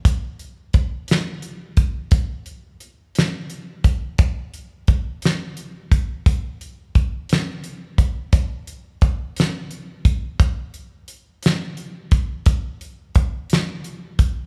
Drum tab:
HH |xxxxxx|xxxxxx|xxxxxx|xxxxxx|
SD |---o--|---o--|---o--|---o--|
BD |o-o--o|o----o|o-o--o|o-o--o|

HH |xxxxxx|xxxxxx|xxxxxx|
SD |---o--|---o--|---o--|
BD |o-o--o|o----o|o-o--o|